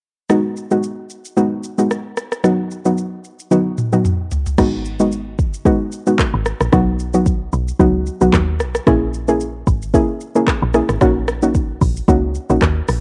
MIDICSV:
0, 0, Header, 1, 4, 480
1, 0, Start_track
1, 0, Key_signature, 5, "minor"
1, 0, Tempo, 535714
1, 267, Time_signature, 4, 2, 24, 8
1, 11652, End_track
2, 0, Start_track
2, 0, Title_t, "Synth pluck"
2, 0, Program_c, 0, 84
2, 264, Note_on_c, 0, 56, 94
2, 265, Note_on_c, 0, 59, 87
2, 268, Note_on_c, 0, 63, 85
2, 269, Note_on_c, 0, 66, 102
2, 606, Note_off_c, 0, 56, 0
2, 606, Note_off_c, 0, 59, 0
2, 607, Note_off_c, 0, 63, 0
2, 608, Note_off_c, 0, 66, 0
2, 636, Note_on_c, 0, 56, 74
2, 638, Note_on_c, 0, 59, 69
2, 640, Note_on_c, 0, 63, 68
2, 642, Note_on_c, 0, 66, 81
2, 782, Note_off_c, 0, 56, 0
2, 783, Note_off_c, 0, 59, 0
2, 784, Note_off_c, 0, 63, 0
2, 785, Note_off_c, 0, 66, 0
2, 1224, Note_on_c, 0, 56, 90
2, 1226, Note_on_c, 0, 59, 87
2, 1227, Note_on_c, 0, 63, 86
2, 1229, Note_on_c, 0, 66, 103
2, 1387, Note_off_c, 0, 56, 0
2, 1388, Note_off_c, 0, 59, 0
2, 1389, Note_off_c, 0, 63, 0
2, 1390, Note_off_c, 0, 66, 0
2, 1596, Note_on_c, 0, 56, 77
2, 1598, Note_on_c, 0, 59, 69
2, 1600, Note_on_c, 0, 63, 68
2, 1601, Note_on_c, 0, 66, 84
2, 1742, Note_off_c, 0, 56, 0
2, 1743, Note_off_c, 0, 59, 0
2, 1744, Note_off_c, 0, 63, 0
2, 1745, Note_off_c, 0, 66, 0
2, 2184, Note_on_c, 0, 54, 90
2, 2186, Note_on_c, 0, 59, 84
2, 2188, Note_on_c, 0, 63, 84
2, 2190, Note_on_c, 0, 66, 100
2, 2526, Note_off_c, 0, 54, 0
2, 2527, Note_off_c, 0, 59, 0
2, 2528, Note_off_c, 0, 63, 0
2, 2528, Note_off_c, 0, 66, 0
2, 2556, Note_on_c, 0, 54, 76
2, 2558, Note_on_c, 0, 59, 70
2, 2560, Note_on_c, 0, 63, 68
2, 2561, Note_on_c, 0, 66, 82
2, 2702, Note_off_c, 0, 54, 0
2, 2703, Note_off_c, 0, 59, 0
2, 2704, Note_off_c, 0, 63, 0
2, 2705, Note_off_c, 0, 66, 0
2, 3145, Note_on_c, 0, 54, 87
2, 3146, Note_on_c, 0, 59, 82
2, 3148, Note_on_c, 0, 63, 82
2, 3150, Note_on_c, 0, 66, 104
2, 3308, Note_off_c, 0, 54, 0
2, 3309, Note_off_c, 0, 59, 0
2, 3309, Note_off_c, 0, 63, 0
2, 3310, Note_off_c, 0, 66, 0
2, 3516, Note_on_c, 0, 54, 76
2, 3518, Note_on_c, 0, 59, 69
2, 3520, Note_on_c, 0, 63, 70
2, 3521, Note_on_c, 0, 66, 88
2, 3662, Note_off_c, 0, 54, 0
2, 3663, Note_off_c, 0, 59, 0
2, 3664, Note_off_c, 0, 63, 0
2, 3665, Note_off_c, 0, 66, 0
2, 4104, Note_on_c, 0, 56, 96
2, 4106, Note_on_c, 0, 59, 86
2, 4107, Note_on_c, 0, 63, 87
2, 4109, Note_on_c, 0, 66, 109
2, 4446, Note_off_c, 0, 56, 0
2, 4446, Note_off_c, 0, 59, 0
2, 4447, Note_off_c, 0, 63, 0
2, 4448, Note_off_c, 0, 66, 0
2, 4476, Note_on_c, 0, 56, 77
2, 4477, Note_on_c, 0, 59, 70
2, 4479, Note_on_c, 0, 63, 73
2, 4481, Note_on_c, 0, 66, 83
2, 4622, Note_off_c, 0, 56, 0
2, 4623, Note_off_c, 0, 59, 0
2, 4624, Note_off_c, 0, 63, 0
2, 4625, Note_off_c, 0, 66, 0
2, 5063, Note_on_c, 0, 56, 92
2, 5065, Note_on_c, 0, 59, 88
2, 5067, Note_on_c, 0, 63, 84
2, 5069, Note_on_c, 0, 66, 101
2, 5227, Note_off_c, 0, 56, 0
2, 5228, Note_off_c, 0, 59, 0
2, 5229, Note_off_c, 0, 63, 0
2, 5230, Note_off_c, 0, 66, 0
2, 5436, Note_on_c, 0, 56, 76
2, 5438, Note_on_c, 0, 59, 72
2, 5439, Note_on_c, 0, 63, 71
2, 5441, Note_on_c, 0, 66, 90
2, 5582, Note_off_c, 0, 56, 0
2, 5583, Note_off_c, 0, 59, 0
2, 5584, Note_off_c, 0, 63, 0
2, 5585, Note_off_c, 0, 66, 0
2, 6023, Note_on_c, 0, 54, 94
2, 6026, Note_on_c, 0, 59, 90
2, 6027, Note_on_c, 0, 63, 87
2, 6029, Note_on_c, 0, 66, 103
2, 6365, Note_off_c, 0, 54, 0
2, 6366, Note_off_c, 0, 59, 0
2, 6367, Note_off_c, 0, 63, 0
2, 6368, Note_off_c, 0, 66, 0
2, 6396, Note_on_c, 0, 54, 78
2, 6398, Note_on_c, 0, 59, 69
2, 6399, Note_on_c, 0, 63, 71
2, 6401, Note_on_c, 0, 66, 88
2, 6542, Note_off_c, 0, 54, 0
2, 6543, Note_off_c, 0, 59, 0
2, 6544, Note_off_c, 0, 63, 0
2, 6545, Note_off_c, 0, 66, 0
2, 6984, Note_on_c, 0, 54, 96
2, 6986, Note_on_c, 0, 59, 87
2, 6988, Note_on_c, 0, 63, 88
2, 6989, Note_on_c, 0, 66, 105
2, 7148, Note_off_c, 0, 54, 0
2, 7148, Note_off_c, 0, 59, 0
2, 7149, Note_off_c, 0, 63, 0
2, 7150, Note_off_c, 0, 66, 0
2, 7356, Note_on_c, 0, 54, 83
2, 7358, Note_on_c, 0, 59, 73
2, 7359, Note_on_c, 0, 63, 69
2, 7361, Note_on_c, 0, 66, 89
2, 7502, Note_off_c, 0, 54, 0
2, 7503, Note_off_c, 0, 59, 0
2, 7504, Note_off_c, 0, 63, 0
2, 7505, Note_off_c, 0, 66, 0
2, 7944, Note_on_c, 0, 58, 95
2, 7946, Note_on_c, 0, 61, 87
2, 7948, Note_on_c, 0, 64, 87
2, 7950, Note_on_c, 0, 68, 109
2, 8286, Note_off_c, 0, 58, 0
2, 8287, Note_off_c, 0, 61, 0
2, 8288, Note_off_c, 0, 64, 0
2, 8289, Note_off_c, 0, 68, 0
2, 8316, Note_on_c, 0, 58, 80
2, 8317, Note_on_c, 0, 61, 71
2, 8319, Note_on_c, 0, 64, 72
2, 8321, Note_on_c, 0, 68, 88
2, 8462, Note_off_c, 0, 58, 0
2, 8463, Note_off_c, 0, 61, 0
2, 8464, Note_off_c, 0, 64, 0
2, 8465, Note_off_c, 0, 68, 0
2, 8904, Note_on_c, 0, 58, 92
2, 8906, Note_on_c, 0, 61, 87
2, 8908, Note_on_c, 0, 64, 86
2, 8909, Note_on_c, 0, 68, 106
2, 9067, Note_off_c, 0, 58, 0
2, 9068, Note_off_c, 0, 61, 0
2, 9069, Note_off_c, 0, 64, 0
2, 9070, Note_off_c, 0, 68, 0
2, 9276, Note_on_c, 0, 58, 82
2, 9278, Note_on_c, 0, 61, 74
2, 9280, Note_on_c, 0, 64, 74
2, 9282, Note_on_c, 0, 68, 87
2, 9422, Note_off_c, 0, 58, 0
2, 9423, Note_off_c, 0, 61, 0
2, 9424, Note_off_c, 0, 64, 0
2, 9425, Note_off_c, 0, 68, 0
2, 9624, Note_on_c, 0, 58, 74
2, 9626, Note_on_c, 0, 61, 69
2, 9628, Note_on_c, 0, 64, 68
2, 9630, Note_on_c, 0, 68, 87
2, 9788, Note_off_c, 0, 58, 0
2, 9789, Note_off_c, 0, 61, 0
2, 9789, Note_off_c, 0, 64, 0
2, 9790, Note_off_c, 0, 68, 0
2, 9864, Note_on_c, 0, 58, 97
2, 9866, Note_on_c, 0, 61, 91
2, 9867, Note_on_c, 0, 63, 87
2, 9869, Note_on_c, 0, 66, 111
2, 10206, Note_off_c, 0, 58, 0
2, 10207, Note_off_c, 0, 61, 0
2, 10207, Note_off_c, 0, 63, 0
2, 10208, Note_off_c, 0, 66, 0
2, 10236, Note_on_c, 0, 58, 77
2, 10238, Note_on_c, 0, 61, 72
2, 10239, Note_on_c, 0, 63, 72
2, 10241, Note_on_c, 0, 66, 87
2, 10382, Note_off_c, 0, 58, 0
2, 10383, Note_off_c, 0, 61, 0
2, 10384, Note_off_c, 0, 63, 0
2, 10385, Note_off_c, 0, 66, 0
2, 10824, Note_on_c, 0, 58, 93
2, 10826, Note_on_c, 0, 61, 86
2, 10828, Note_on_c, 0, 63, 87
2, 10830, Note_on_c, 0, 66, 105
2, 10988, Note_off_c, 0, 58, 0
2, 10989, Note_off_c, 0, 61, 0
2, 10990, Note_off_c, 0, 63, 0
2, 10990, Note_off_c, 0, 66, 0
2, 11197, Note_on_c, 0, 58, 78
2, 11199, Note_on_c, 0, 61, 73
2, 11200, Note_on_c, 0, 63, 73
2, 11202, Note_on_c, 0, 66, 84
2, 11342, Note_off_c, 0, 58, 0
2, 11343, Note_off_c, 0, 61, 0
2, 11344, Note_off_c, 0, 63, 0
2, 11345, Note_off_c, 0, 66, 0
2, 11652, End_track
3, 0, Start_track
3, 0, Title_t, "Log drum bass"
3, 0, Program_c, 1, 39
3, 4107, Note_on_c, 1, 32, 98
3, 4826, Note_on_c, 1, 30, 93
3, 4840, Note_off_c, 1, 32, 0
3, 5095, Note_off_c, 1, 30, 0
3, 5679, Note_on_c, 1, 32, 87
3, 5852, Note_off_c, 1, 32, 0
3, 5919, Note_on_c, 1, 34, 88
3, 5997, Note_off_c, 1, 34, 0
3, 6027, Note_on_c, 1, 35, 113
3, 6711, Note_off_c, 1, 35, 0
3, 6747, Note_on_c, 1, 35, 90
3, 6921, Note_off_c, 1, 35, 0
3, 6985, Note_on_c, 1, 37, 100
3, 7255, Note_off_c, 1, 37, 0
3, 7359, Note_on_c, 1, 35, 89
3, 7437, Note_off_c, 1, 35, 0
3, 7465, Note_on_c, 1, 39, 98
3, 7707, Note_on_c, 1, 35, 93
3, 7720, Note_off_c, 1, 39, 0
3, 7880, Note_off_c, 1, 35, 0
3, 7947, Note_on_c, 1, 34, 107
3, 8631, Note_off_c, 1, 34, 0
3, 8666, Note_on_c, 1, 32, 86
3, 8935, Note_off_c, 1, 32, 0
3, 9519, Note_on_c, 1, 34, 92
3, 9692, Note_off_c, 1, 34, 0
3, 9759, Note_on_c, 1, 32, 95
3, 9837, Note_off_c, 1, 32, 0
3, 9867, Note_on_c, 1, 34, 104
3, 10551, Note_off_c, 1, 34, 0
3, 10586, Note_on_c, 1, 34, 91
3, 10760, Note_off_c, 1, 34, 0
3, 10825, Note_on_c, 1, 37, 103
3, 11095, Note_off_c, 1, 37, 0
3, 11198, Note_on_c, 1, 34, 96
3, 11277, Note_off_c, 1, 34, 0
3, 11305, Note_on_c, 1, 39, 93
3, 11479, Note_off_c, 1, 39, 0
3, 11547, Note_on_c, 1, 34, 89
3, 11652, Note_off_c, 1, 34, 0
3, 11652, End_track
4, 0, Start_track
4, 0, Title_t, "Drums"
4, 266, Note_on_c, 9, 37, 86
4, 267, Note_on_c, 9, 82, 72
4, 356, Note_off_c, 9, 37, 0
4, 356, Note_off_c, 9, 82, 0
4, 506, Note_on_c, 9, 82, 60
4, 596, Note_off_c, 9, 82, 0
4, 635, Note_on_c, 9, 82, 72
4, 725, Note_off_c, 9, 82, 0
4, 745, Note_on_c, 9, 82, 72
4, 835, Note_off_c, 9, 82, 0
4, 984, Note_on_c, 9, 82, 50
4, 1074, Note_off_c, 9, 82, 0
4, 1120, Note_on_c, 9, 82, 66
4, 1210, Note_off_c, 9, 82, 0
4, 1228, Note_on_c, 9, 82, 72
4, 1317, Note_off_c, 9, 82, 0
4, 1464, Note_on_c, 9, 82, 59
4, 1554, Note_off_c, 9, 82, 0
4, 1598, Note_on_c, 9, 82, 73
4, 1688, Note_off_c, 9, 82, 0
4, 1708, Note_on_c, 9, 82, 70
4, 1710, Note_on_c, 9, 37, 86
4, 1798, Note_off_c, 9, 82, 0
4, 1800, Note_off_c, 9, 37, 0
4, 1943, Note_on_c, 9, 82, 57
4, 1946, Note_on_c, 9, 37, 88
4, 2033, Note_off_c, 9, 82, 0
4, 2036, Note_off_c, 9, 37, 0
4, 2078, Note_on_c, 9, 37, 87
4, 2078, Note_on_c, 9, 82, 60
4, 2168, Note_off_c, 9, 37, 0
4, 2168, Note_off_c, 9, 82, 0
4, 2186, Note_on_c, 9, 37, 91
4, 2187, Note_on_c, 9, 82, 73
4, 2276, Note_off_c, 9, 37, 0
4, 2277, Note_off_c, 9, 82, 0
4, 2426, Note_on_c, 9, 82, 62
4, 2516, Note_off_c, 9, 82, 0
4, 2555, Note_on_c, 9, 82, 73
4, 2645, Note_off_c, 9, 82, 0
4, 2665, Note_on_c, 9, 82, 72
4, 2755, Note_off_c, 9, 82, 0
4, 2905, Note_on_c, 9, 82, 52
4, 2994, Note_off_c, 9, 82, 0
4, 3040, Note_on_c, 9, 82, 69
4, 3130, Note_off_c, 9, 82, 0
4, 3147, Note_on_c, 9, 48, 54
4, 3147, Note_on_c, 9, 82, 70
4, 3236, Note_off_c, 9, 48, 0
4, 3237, Note_off_c, 9, 82, 0
4, 3384, Note_on_c, 9, 82, 60
4, 3387, Note_on_c, 9, 47, 70
4, 3473, Note_off_c, 9, 82, 0
4, 3476, Note_off_c, 9, 47, 0
4, 3517, Note_on_c, 9, 82, 72
4, 3519, Note_on_c, 9, 47, 60
4, 3607, Note_off_c, 9, 82, 0
4, 3608, Note_off_c, 9, 47, 0
4, 3627, Note_on_c, 9, 45, 75
4, 3628, Note_on_c, 9, 82, 68
4, 3716, Note_off_c, 9, 45, 0
4, 3717, Note_off_c, 9, 82, 0
4, 3863, Note_on_c, 9, 82, 58
4, 3867, Note_on_c, 9, 43, 96
4, 3953, Note_off_c, 9, 82, 0
4, 3956, Note_off_c, 9, 43, 0
4, 3998, Note_on_c, 9, 82, 60
4, 3999, Note_on_c, 9, 43, 78
4, 4087, Note_off_c, 9, 82, 0
4, 4088, Note_off_c, 9, 43, 0
4, 4106, Note_on_c, 9, 37, 90
4, 4107, Note_on_c, 9, 36, 111
4, 4107, Note_on_c, 9, 49, 95
4, 4107, Note_on_c, 9, 82, 77
4, 4196, Note_off_c, 9, 37, 0
4, 4196, Note_off_c, 9, 49, 0
4, 4196, Note_off_c, 9, 82, 0
4, 4197, Note_off_c, 9, 36, 0
4, 4346, Note_on_c, 9, 82, 64
4, 4436, Note_off_c, 9, 82, 0
4, 4475, Note_on_c, 9, 82, 74
4, 4565, Note_off_c, 9, 82, 0
4, 4585, Note_on_c, 9, 82, 78
4, 4675, Note_off_c, 9, 82, 0
4, 4825, Note_on_c, 9, 82, 56
4, 4826, Note_on_c, 9, 36, 96
4, 4914, Note_off_c, 9, 82, 0
4, 4916, Note_off_c, 9, 36, 0
4, 4961, Note_on_c, 9, 82, 71
4, 5050, Note_off_c, 9, 82, 0
4, 5065, Note_on_c, 9, 36, 91
4, 5068, Note_on_c, 9, 82, 73
4, 5155, Note_off_c, 9, 36, 0
4, 5157, Note_off_c, 9, 82, 0
4, 5305, Note_on_c, 9, 82, 64
4, 5394, Note_off_c, 9, 82, 0
4, 5438, Note_on_c, 9, 82, 76
4, 5527, Note_off_c, 9, 82, 0
4, 5545, Note_on_c, 9, 36, 86
4, 5548, Note_on_c, 9, 82, 74
4, 5550, Note_on_c, 9, 37, 93
4, 5550, Note_on_c, 9, 39, 93
4, 5635, Note_off_c, 9, 36, 0
4, 5638, Note_off_c, 9, 82, 0
4, 5640, Note_off_c, 9, 37, 0
4, 5640, Note_off_c, 9, 39, 0
4, 5784, Note_on_c, 9, 82, 61
4, 5787, Note_on_c, 9, 37, 92
4, 5873, Note_off_c, 9, 82, 0
4, 5877, Note_off_c, 9, 37, 0
4, 5919, Note_on_c, 9, 37, 93
4, 5919, Note_on_c, 9, 82, 62
4, 6008, Note_off_c, 9, 37, 0
4, 6008, Note_off_c, 9, 82, 0
4, 6027, Note_on_c, 9, 36, 114
4, 6027, Note_on_c, 9, 37, 92
4, 6027, Note_on_c, 9, 82, 79
4, 6116, Note_off_c, 9, 37, 0
4, 6117, Note_off_c, 9, 36, 0
4, 6117, Note_off_c, 9, 82, 0
4, 6266, Note_on_c, 9, 82, 67
4, 6356, Note_off_c, 9, 82, 0
4, 6395, Note_on_c, 9, 82, 75
4, 6485, Note_off_c, 9, 82, 0
4, 6505, Note_on_c, 9, 82, 73
4, 6507, Note_on_c, 9, 36, 95
4, 6594, Note_off_c, 9, 82, 0
4, 6596, Note_off_c, 9, 36, 0
4, 6744, Note_on_c, 9, 82, 54
4, 6834, Note_off_c, 9, 82, 0
4, 6880, Note_on_c, 9, 82, 74
4, 6970, Note_off_c, 9, 82, 0
4, 6985, Note_on_c, 9, 36, 93
4, 6987, Note_on_c, 9, 82, 73
4, 7075, Note_off_c, 9, 36, 0
4, 7077, Note_off_c, 9, 82, 0
4, 7224, Note_on_c, 9, 82, 60
4, 7314, Note_off_c, 9, 82, 0
4, 7358, Note_on_c, 9, 82, 76
4, 7447, Note_off_c, 9, 82, 0
4, 7465, Note_on_c, 9, 36, 82
4, 7468, Note_on_c, 9, 82, 73
4, 7470, Note_on_c, 9, 37, 93
4, 7470, Note_on_c, 9, 39, 95
4, 7554, Note_off_c, 9, 36, 0
4, 7557, Note_off_c, 9, 82, 0
4, 7560, Note_off_c, 9, 37, 0
4, 7560, Note_off_c, 9, 39, 0
4, 7703, Note_on_c, 9, 82, 60
4, 7707, Note_on_c, 9, 37, 86
4, 7793, Note_off_c, 9, 82, 0
4, 7796, Note_off_c, 9, 37, 0
4, 7838, Note_on_c, 9, 37, 91
4, 7838, Note_on_c, 9, 82, 62
4, 7928, Note_off_c, 9, 37, 0
4, 7928, Note_off_c, 9, 82, 0
4, 7946, Note_on_c, 9, 37, 97
4, 7947, Note_on_c, 9, 36, 117
4, 7947, Note_on_c, 9, 82, 75
4, 8036, Note_off_c, 9, 36, 0
4, 8036, Note_off_c, 9, 37, 0
4, 8037, Note_off_c, 9, 82, 0
4, 8186, Note_on_c, 9, 82, 65
4, 8276, Note_off_c, 9, 82, 0
4, 8316, Note_on_c, 9, 82, 73
4, 8405, Note_off_c, 9, 82, 0
4, 8426, Note_on_c, 9, 82, 78
4, 8515, Note_off_c, 9, 82, 0
4, 8665, Note_on_c, 9, 82, 55
4, 8666, Note_on_c, 9, 36, 95
4, 8754, Note_off_c, 9, 82, 0
4, 8756, Note_off_c, 9, 36, 0
4, 8800, Note_on_c, 9, 82, 73
4, 8890, Note_off_c, 9, 82, 0
4, 8905, Note_on_c, 9, 36, 96
4, 8907, Note_on_c, 9, 82, 77
4, 8995, Note_off_c, 9, 36, 0
4, 8997, Note_off_c, 9, 82, 0
4, 9144, Note_on_c, 9, 82, 65
4, 9234, Note_off_c, 9, 82, 0
4, 9277, Note_on_c, 9, 82, 75
4, 9367, Note_off_c, 9, 82, 0
4, 9385, Note_on_c, 9, 36, 86
4, 9388, Note_on_c, 9, 82, 71
4, 9390, Note_on_c, 9, 37, 97
4, 9390, Note_on_c, 9, 39, 97
4, 9474, Note_off_c, 9, 36, 0
4, 9477, Note_off_c, 9, 82, 0
4, 9479, Note_off_c, 9, 37, 0
4, 9479, Note_off_c, 9, 39, 0
4, 9623, Note_on_c, 9, 82, 59
4, 9626, Note_on_c, 9, 37, 90
4, 9713, Note_off_c, 9, 82, 0
4, 9716, Note_off_c, 9, 37, 0
4, 9758, Note_on_c, 9, 37, 90
4, 9758, Note_on_c, 9, 82, 65
4, 9847, Note_off_c, 9, 37, 0
4, 9847, Note_off_c, 9, 82, 0
4, 9866, Note_on_c, 9, 37, 96
4, 9867, Note_on_c, 9, 36, 116
4, 9867, Note_on_c, 9, 82, 78
4, 9956, Note_off_c, 9, 36, 0
4, 9956, Note_off_c, 9, 37, 0
4, 9956, Note_off_c, 9, 82, 0
4, 10106, Note_on_c, 9, 82, 66
4, 10107, Note_on_c, 9, 37, 100
4, 10195, Note_off_c, 9, 82, 0
4, 10196, Note_off_c, 9, 37, 0
4, 10235, Note_on_c, 9, 82, 76
4, 10325, Note_off_c, 9, 82, 0
4, 10345, Note_on_c, 9, 82, 76
4, 10347, Note_on_c, 9, 36, 92
4, 10434, Note_off_c, 9, 82, 0
4, 10436, Note_off_c, 9, 36, 0
4, 10584, Note_on_c, 9, 46, 74
4, 10584, Note_on_c, 9, 82, 52
4, 10586, Note_on_c, 9, 36, 94
4, 10674, Note_off_c, 9, 46, 0
4, 10674, Note_off_c, 9, 82, 0
4, 10676, Note_off_c, 9, 36, 0
4, 10720, Note_on_c, 9, 82, 72
4, 10810, Note_off_c, 9, 82, 0
4, 10825, Note_on_c, 9, 36, 96
4, 10828, Note_on_c, 9, 82, 72
4, 10915, Note_off_c, 9, 36, 0
4, 10917, Note_off_c, 9, 82, 0
4, 11064, Note_on_c, 9, 82, 63
4, 11154, Note_off_c, 9, 82, 0
4, 11198, Note_on_c, 9, 82, 77
4, 11287, Note_off_c, 9, 82, 0
4, 11305, Note_on_c, 9, 36, 80
4, 11308, Note_on_c, 9, 82, 72
4, 11310, Note_on_c, 9, 37, 98
4, 11310, Note_on_c, 9, 39, 94
4, 11395, Note_off_c, 9, 36, 0
4, 11397, Note_off_c, 9, 82, 0
4, 11400, Note_off_c, 9, 37, 0
4, 11400, Note_off_c, 9, 39, 0
4, 11543, Note_on_c, 9, 46, 83
4, 11543, Note_on_c, 9, 82, 61
4, 11546, Note_on_c, 9, 37, 86
4, 11633, Note_off_c, 9, 46, 0
4, 11633, Note_off_c, 9, 82, 0
4, 11636, Note_off_c, 9, 37, 0
4, 11652, End_track
0, 0, End_of_file